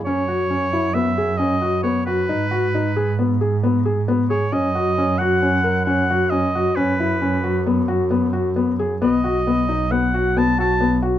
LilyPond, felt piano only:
\new Staff \with { instrumentName = "Felt piano" } { \time 5/4 \key gis \minor \tempo 4 = 134 cis'8 fis'8 cis'8 e'8 b8 gis'8 cis'8 fis'8 b8 fis'8 | dis'8 fis'8 dis'8 gis'8 b8 gis'8 b8 gis'8 b8 gis'8 | cis'8 fis'8 cis'8 fis'8 cis'8 ais'8 cis'8 fis'8 cis'8 fis'8 | cis'8 e'8 cis'8 fis'8 b8 fis'8 b8 fis'8 b8 gis'8 |
b8 fis'8 b8 dis'8 b8 fis'8 b8 fis'8 b8 fis'8 | }